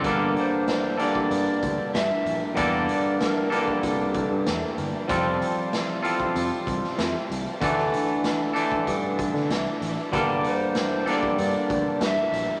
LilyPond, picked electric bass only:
\new Staff \with { instrumentName = "Picked electric bass" } { \clef bass \time 4/4 \key g \dorian \tempo 4 = 95 g,,8 r4. g,16 r16 d,16 r16 g,16 r16 bes,,16 r16 | e,8 r4. c,8. g,16 e,,16 r16 g,,16 r16 | f,,8 r4. f,16 r16 c,16 r16 f,16 r16 c,16 r16 | d,8 r4. g,8. d16 c,16 r16 a,,16 r16 |
g,,8 r4. g,16 r16 d,16 r16 g,16 r16 bes,,16 r16 | }